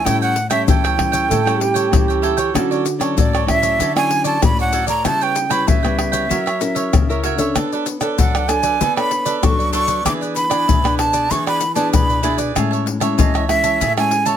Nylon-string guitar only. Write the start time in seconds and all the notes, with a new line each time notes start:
0.05 A2 G3 C#4 E4
0.50 G3 C#4 E4
0.67 E3
0.97 G3 C#4 E4
1.28 A2
1.45 G3 C#4 E4
1.91 E3 G3 C#4 E4
2.54 D3 F#3 C#4 E4
2.99 F#3 C#4 E4
3.16 A2
3.46 F#3 C#4 E4
3.78 D3
3.95 F#3 C#4 E4
4.41 A2 F#3 C#4 E4
5.04 C#3 G3 B3 E4
5.49 G3 B3 E4
5.68 C#3
5.83 G3 B3 E4
6.30 F#3 C#4 E4 A#4
6.60 C#4 E4 A#4
6.93 C#3
7.09 C#4 E4 A#4
7.38 D4 A4 C#5
7.55 B3
8.00 D4 A4 C#5
8.18 F#3
8.48 D4 A4 C#5
8.81 B3
8.97 D4 A4 C#5
9.42 F#3 D4 A4 C#5
10.05 E3 B3 D4 G#4
10.50 B3 D4 G#4
10.68 B2
10.84 B3 D4 G#4
11.30 E3 B3 D4 G#4
11.75 B3 D4 G#4
11.93 B2
12.23 B3 D4 G#4
12.55 A2 G#3 C#4 E4
13.00 G#3 C#4 E4
13.18 E3
13.48 G#3 C#4 E4
13.81 A2
13.97 G#3 C#4 E4